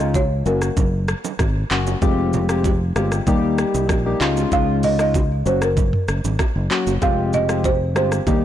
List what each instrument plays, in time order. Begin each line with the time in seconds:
Already playing: fingered electric bass C#2, marimba D#5
0.00 synth keys G#3 C#4 D#4 F4
0.14 marimba C#5, kick, high bongo, shaker
0.46 fingered electric bass F#1, synth keys F#3 A#3 C#4 F#4, marimba A#4, high bongo, shaker
0.62 cross-stick, shaker
0.77 fingered electric bass F#1, kick, low bongo, low conga, shaker
1.08 cross-stick, shaker
1.25 low bongo, shaker
1.39 fingered electric bass G#1, kick, cross-stick, high bongo, shaker
1.71 fingered electric bass F#1, synth keys F#3 A#3 C#4 F#4, clap, shaker
1.87 high bongo, shaker
2.02 fingered electric bass F1, synth keys G#3 C4 F4 G4, kick, low conga, shaker
2.33 low conga, shaker
2.49 synth keys G#3 C4 F4 G4, cross-stick, shaker
2.64 kick, high bongo, shaker
2.96 fingered electric bass G1, synth keys G#3 C4 F4 G4, cross-stick, high bongo, shaker
3.12 cross-stick, shaker
3.27 fingered electric bass D#2, synth keys G3 A#3 D#4 G4, kick, low bongo, low conga, shaker
3.58 cross-stick, shaker
3.74 fingered electric bass C2, low bongo, shaker
3.89 fingered electric bass A#1, kick, cross-stick, high bongo, shaker
4.06 synth keys G3 A#3 D#4 G4
4.21 fingered electric bass C#2, synth keys G#3 C#4 D#4 F4, clap, shaker
4.37 high bongo, shaker
4.52 fingered electric bass C#2, synth keys G#3 C#4 D#4 F4, marimba F5, kick, low conga, shaker
4.83 marimba D#5, open hi-hat, low conga, shaker
4.99 synth keys G#3 C#4 D#4 F4, marimba D#5, cross-stick, shaker
5.14 kick, high bongo, shaker
5.46 fingered electric bass F#1, synth keys F#3 A#3 C#4 F#4, marimba C5, high bongo, shaker
5.62 marimba A#4, cross-stick, shaker
5.77 kick, low bongo, low conga, shaker
5.93 mid tom
6.08 fingered electric bass F#1, cross-stick, shaker
6.24 fingered electric bass G#1, low bongo, shaker
6.39 kick, cross-stick, high bongo, shaker
6.56 fingered electric bass F#1
6.70 synth keys F#3 A#3 C#4 F#4, clap, shaker
6.87 fingered electric bass F#1, high bongo, shaker
7.02 fingered electric bass F1, synth keys G#3 C4 F4 G4, marimba F5, kick, low conga, shaker
7.33 marimba D#5, low conga, shaker
7.49 synth keys G#3 C4 F4 G4, cross-stick, shaker
7.64 marimba C5, kick, high bongo, shaker
7.95 fingered electric bass G1, synth keys G#3 C4 F4 G4, marimba C5, cross-stick, high bongo, shaker
8.12 cross-stick, shaker
8.27 fingered electric bass D#2, synth keys G3 A#3 D#4 G4, kick, low bongo, low conga, shaker